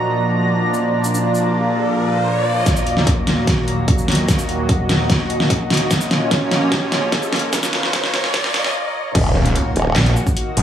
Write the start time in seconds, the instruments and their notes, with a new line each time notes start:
Already playing: analog synth pad A#2 F3 D4, ambient pad F4 D5 A#5, riser
0.74 shaker
1.04 shaker
1.14 shaker
1.35 shaker
2.66 analog synth pad D#2 A#2 F#3, ambient pad F#4, kick, snare, closed hi-hat, riser, shaker
2.77 shaker
2.87 closed hi-hat
2.97 snare
3.04 ambient pad D#5, kick, closed hi-hat
3.27 snare, closed hi-hat
3.47 kick, snare, closed hi-hat
3.68 closed hi-hat
3.88 kick, closed hi-hat
3.98 shaker
4.08 snare, closed hi-hat
4.12 closed hi-hat
4.15 closed hi-hat
4.29 kick, snare, closed hi-hat, shaker
4.39 shaker
4.49 closed hi-hat
4.69 kick, closed hi-hat
4.89 snare, closed hi-hat
5.10 kick, snare, closed hi-hat
5.30 closed hi-hat
5.40 snare
5.50 kick, closed hi-hat
5.70 snare, closed hi-hat
5.74 closed hi-hat
5.77 closed hi-hat
5.91 analog synth pad A#2 F3 C#4, ambient pad F4, kick, snare, closed hi-hat, shaker
6.01 shaker
6.11 snare, closed hi-hat
6.19 ambient pad C#5
6.31 kick, snare, closed hi-hat
6.51 snare, closed hi-hat
6.72 kick, snare, closed hi-hat
6.92 snare, closed hi-hat
7.12 kick, snare, closed hi-hat
7.23 shaker
7.33 snare, closed hi-hat
7.36 closed hi-hat
7.39 closed hi-hat
7.53 kick, snare, closed hi-hat, shaker
7.63 snare, shaker
7.73 snare, closed hi-hat
7.83 snare
7.93 kick, snare, closed hi-hat
8.04 snare
8.14 snare, closed hi-hat
8.24 snare
8.34 kick, snare, closed hi-hat
8.44 snare
8.54 snare, closed hi-hat
8.64 snare
9.15 wobble bass D#1, analog synth pad D#3 A#3 F#4, ambient pad F#4, kick, closed hi-hat, crash, impact
9.33 detuned saw bass D#1, ambient pad D#5
9.46 closed hi-hat
9.56 closed hi-hat
9.74 wobble bass D#1, ambient pad A#5, open hi-hat
9.96 detuned saw bass A#1, snare, clap, closed hi-hat
10.06 closed hi-hat
10.16 shaker
10.27 kick, shaker
10.37 closed hi-hat
10.57 detuned saw bass F#1, open hi-hat